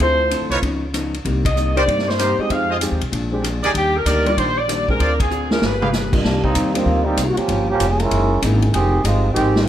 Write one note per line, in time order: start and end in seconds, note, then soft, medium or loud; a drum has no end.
0.00 0.38 D2 medium
0.00 0.21 D3 medium
0.00 0.62 A3 medium
0.00 0.21 C4 soft
0.00 0.63 C4 soft
0.00 0.63 E4 soft
0.00 0.21 F4 medium
0.00 0.63 F4 medium
0.00 0.22 A4 medium
0.00 0.49 C5 loud
0.00 kick soft
0.30 0.52 D3 medium
0.30 0.52 C4 medium
0.30 0.53 F4 medium
0.30 0.53 A4 medium
0.30 hi-hat pedal medium
0.30 ride medium
0.41 0.49 F2 medium
0.50 0.60 C2 medium
0.50 0.59 D#4 medium
0.50 0.59 F4 medium
0.50 0.59 B4 medium
0.50 0.59 C#5 loud
0.50 ride soft
0.62 1.21 C#2 medium
0.62 0.83 C#3 medium
0.62 0.83 F3 soft
0.62 0.84 B3 medium
0.62 0.84 D#4 medium
0.62 kick soft
0.62 ride medium
0.94 1.14 C#3 medium
0.94 1.15 F3 medium
0.94 1.15 B3 medium
0.94 1.15 D#4 medium
0.94 cross-stick medium
0.94 hi-hat pedal medium
0.94 ride medium
1.14 ride soft
1.25 1.84 C2 medium
1.25 1.46 C3 medium
1.25 1.46 G3 medium
1.25 1.46 A#3 medium
1.25 1.47 D#4 medium
1.25 kick soft
1.25 ride medium
1.45 1.74 D#5 medium
1.45 kick medium
1.45 ride medium
1.56 1.77 C3 medium
1.56 1.77 G3 medium
1.56 1.78 A#3 medium
1.56 1.78 D#4 medium
1.56 hi-hat pedal medium
1.75 1.86 A#3 medium
1.75 1.86 D4 medium
1.75 1.84 D#4 medium
1.75 1.86 D#4 medium
1.75 1.84 G4 medium
1.75 1.86 G4 medium
1.75 1.84 A#4 medium
1.75 1.83 C5 loud
1.75 2.06 D5 medium
1.75 ride soft
1.86 2.35 G2 medium
1.86 2.08 C3 soft
1.86 2.08 G3 medium
1.86 2.08 A#3 medium
1.86 2.09 D#4 medium
1.86 kick soft
1.86 ride medium
1.99 snare soft
2.08 2.39 C5 medium
2.08 snare soft
2.19 2.40 C3 medium
2.19 2.40 G3 medium
2.19 2.40 A#3 medium
2.19 2.32 D#4 medium
2.19 2.40 D#4 medium
2.19 2.32 G4 medium
2.19 2.32 A#4 medium
2.19 2.32 C5 medium
2.19 cross-stick medium
2.19 hi-hat pedal medium
2.19 ride medium
2.38 2.79 G#3 medium
2.38 2.79 C4 medium
2.38 2.79 D#4 medium
2.38 2.80 G4 medium
2.38 2.50 D#5 medium
2.38 muted upright bass stroke soft
2.50 2.88 F2 medium
2.50 2.71 F3 soft
2.50 2.71 C4 medium
2.50 2.72 D#4 medium
2.50 2.72 G#4 medium
2.50 2.82 F5 loud
2.50 kick soft
2.50 ride medium
2.70 2.77 F4 medium
2.70 2.77 G#4 medium
2.70 2.77 C5 medium
2.70 2.77 D#5 medium
2.80 3.02 F3 medium
2.80 2.98 G#3 medium
2.80 2.99 C4 medium
2.80 3.02 C4 medium
2.80 3.02 D#4 medium
2.80 2.99 D#4 medium
2.80 3.00 G4 medium
2.80 3.03 G#4 medium
2.80 hi-hat pedal medium
2.80 ride medium
2.91 3.00 D#2 medium
3.01 3.11 B1 medium
3.01 ride soft
3.12 3.59 A#1 medium
3.12 3.33 A#2 medium
3.12 3.33 F3 medium
3.12 3.34 G#3 medium
3.12 3.34 D4 medium
3.12 kick soft
3.12 ride medium
3.32 3.42 G#3 medium
3.32 3.42 C4 medium
3.32 3.42 D4 medium
3.32 3.43 G4 medium
3.42 3.63 A#2 medium
3.42 3.64 F3 medium
3.42 3.64 G#3 medium
3.42 3.65 D4 medium
3.42 cross-stick medium
3.42 hi-hat pedal medium
3.42 ride medium
3.63 3.73 D2 medium
3.63 3.71 D#4 medium
3.63 3.71 G4 medium
3.63 3.70 G#4 medium
3.63 3.71 A#4 medium
3.63 3.71 D5 loud
3.63 ride soft
3.74 4.03 D#2 medium
3.74 3.95 D#3 medium
3.74 3.96 G3 medium
3.74 3.96 A#3 medium
3.74 3.96 D4 medium
3.74 3.94 G4 medium
3.74 kick soft
3.74 ride medium
3.97 4.27 A#4 medium
4.05 4.34 D2 medium
4.05 4.27 D#3 medium
4.05 4.27 G3 medium
4.05 4.27 A#3 medium
4.05 4.28 D4 medium
4.05 4.53 D#4 medium
4.05 4.53 G4 medium
4.05 4.53 A#4 medium
4.05 4.53 D5 loud
4.05 hi-hat pedal medium
4.05 ride medium
4.25 4.35 G3 medium
4.25 4.36 A#3 medium
4.25 4.36 D4 medium
4.25 4.36 F4 medium
4.25 4.38 D5 medium
4.25 ride soft
4.37 4.96 A#1 medium
4.37 4.58 D#3 soft
4.37 4.58 G3 soft
4.37 4.58 A#3 medium
4.37 4.59 D4 medium
4.37 4.57 C5 loud
4.37 kick soft
4.37 ride medium
4.58 4.88 D5 loud
4.68 4.89 D#3 medium
4.68 4.89 G3 medium
4.68 4.89 A#3 medium
4.68 4.90 D4 medium
4.68 cross-stick medium
4.68 hi-hat pedal medium
4.68 ride medium
4.88 4.98 G#3 medium
4.88 4.99 C4 medium
4.88 4.99 D4 medium
4.88 4.99 G#4 medium
4.88 5.18 A#4 medium
4.88 kick medium
4.99 5.59 D2 medium
4.99 5.20 D3 soft
4.99 5.21 C4 medium
4.99 5.13 F4 medium
4.99 5.21 F4 medium
4.99 5.13 G#4 medium
4.99 5.21 G#4 medium
4.99 5.13 C5 medium
4.99 5.13 D5 medium
4.99 kick soft
4.99 ride medium
5.20 5.49 G#4 medium
5.20 kick medium
5.20 ride medium
5.30 5.51 D3 medium
5.30 5.52 C4 medium
5.30 5.52 F4 medium
5.30 5.52 G#4 medium
5.30 hi-hat pedal medium
5.50 5.60 G#3 medium
5.50 5.61 B3 medium
5.50 5.61 D4 medium
5.50 5.61 F4 medium
5.50 5.62 A#4 medium
5.50 snare medium
5.61 6.21 G1 medium
5.61 5.82 G3 soft
5.61 5.83 B3 soft
5.61 5.83 F4 medium
5.61 5.84 G#4 medium
5.61 6.14 B4 medium
5.61 snare medium
5.81 5.89 G4 medium
5.81 5.89 G#4 medium
5.81 5.89 B4 medium
5.81 5.89 F5 medium
5.81 mid tom medium
5.92 6.13 G3 medium
5.92 6.14 B3 medium
5.92 6.14 F4 medium
5.92 6.14 G#4 medium
5.92 snare medium
5.92 hi-hat pedal medium
6.12 6.22 C3 medium
6.12 6.22 G3 medium
6.12 6.22 A#3 medium
6.12 6.23 D4 medium
6.12 6.23 F4 medium
6.12 kick medium
6.12 crash medium
6.23 6.54 C2 medium
6.23 6.44 C3 medium
6.23 6.42 D#3 medium
6.23 6.42 G3 medium
6.23 6.45 G3 medium
6.23 6.42 A#3 medium
6.23 6.45 A#3 soft
6.23 6.42 D4 medium
6.23 6.46 D#4 medium
6.23 snare soft
6.44 6.73 G3 medium
6.44 6.73 A#3 medium
6.44 6.73 C4 medium
6.44 6.73 D#4 medium
6.44 kick medium
6.55 6.85 D#2 medium
6.55 6.76 C3 medium
6.55 6.76 G3 medium
6.55 6.76 A#3 medium
6.55 6.77 D#4 medium
6.55 kick soft
6.55 hi-hat pedal medium
6.55 ride medium
6.74 6.85 D#3 medium
6.74 6.85 G3 medium
6.74 7.04 A#3 medium
6.74 6.85 A#3 medium
6.74 7.05 C4 medium
6.74 6.85 C4 medium
6.74 6.86 D4 medium
6.74 7.04 D#4 medium
6.74 7.06 F4 medium
6.74 ride medium
6.85 7.16 D2 medium
6.85 7.07 C3 soft
6.85 7.07 G3 medium
6.85 7.08 A#3 medium
6.85 7.08 D#4 medium
6.85 kick soft
7.05 7.28 G3 medium
7.05 7.28 A#3 medium
7.05 7.28 C4 medium
7.05 7.28 D#4 medium
7.17 7.36 C2 medium
7.17 7.38 C3 medium
7.17 7.39 G3 medium
7.17 7.39 A#3 medium
7.17 7.39 D#4 medium
7.17 kick soft
7.17 hi-hat pedal medium
7.17 ride medium
7.27 7.37 F#4 medium
7.36 7.68 F3 medium
7.36 7.68 A#3 medium
7.36 7.68 C#4 medium
7.36 7.68 G4 medium
7.36 muted upright bass stroke soft
7.36 ride soft
7.48 7.78 G1 medium
7.48 7.69 G2 medium
7.48 7.70 F3 medium
7.48 7.70 A#3 medium
7.48 7.71 C#4 medium
7.48 kick soft
7.48 ride medium
7.69 7.90 F3 medium
7.69 7.90 A#3 medium
7.69 7.90 C#4 medium
7.69 7.90 G4 loud
7.80 8.10 F1 medium
7.80 8.01 G2 medium
7.80 8.01 F3 medium
7.80 8.01 A#3 medium
7.80 8.02 C#4 medium
7.80 kick soft
7.80 hi-hat pedal medium
7.80 ride medium
7.91 8.00 G#4 medium
8.00 8.43 G#3 medium
8.00 8.42 C#4 medium
8.00 8.43 E4 medium
8.00 8.43 A#4 loud
8.00 ride soft
8.11 8.41 F#1 medium
8.11 8.32 F#2 soft
8.11 8.32 E3 medium
8.11 8.33 A#3 medium
8.11 8.33 D#4 soft
8.11 kick soft
8.11 ride medium
8.41 8.72 G#1 medium
8.41 8.63 F#2 medium
8.41 8.73 E3 medium
8.41 8.64 E3 medium
8.41 8.73 G#3 medium
8.41 8.73 A#3 medium
8.41 8.64 A#3 medium
8.41 8.74 C#4 medium
8.41 8.74 D#4 medium
8.41 8.64 D#4 medium
8.41 kick soft
8.41 hi-hat pedal medium
8.41 ride medium
8.62 ride soft
8.73 9.03 F1 medium
8.73 9.03 D#3 medium
8.73 8.94 F3 soft
8.73 8.95 G#3 medium
8.73 9.02 C4 medium
8.73 8.95 D#4 medium
8.73 9.02 G4 medium
8.73 8.96 G4 medium
8.73 9.02 G#4 medium
8.73 kick soft
8.73 ride medium
9.04 9.34 G1 medium
9.04 9.25 F3 medium
9.04 9.33 G#3 medium
9.04 9.26 G#3 medium
9.04 9.33 C4 medium
9.04 9.33 D#4 medium
9.04 9.26 D#4 medium
9.04 9.34 F4 medium
9.04 9.26 G4 medium
9.04 kick soft
9.04 hi-hat pedal medium
9.04 ride medium
9.34 9.66 G#1 medium
9.34 9.64 D#3 medium
9.34 9.56 F3 medium
9.34 9.64 G#3 medium
9.34 9.57 G#3 medium
9.34 9.64 C4 medium
9.34 9.57 D#4 medium
9.34 9.64 G4 loud
9.34 kick soft
9.34 ride medium
9.38 9.58 G4 medium
9.55 9.68 F3 medium
9.55 9.68 G3 medium
9.55 9.68 G#3 medium
9.55 9.68 C4 medium
9.55 9.68 D#4 medium
9.55 snare medium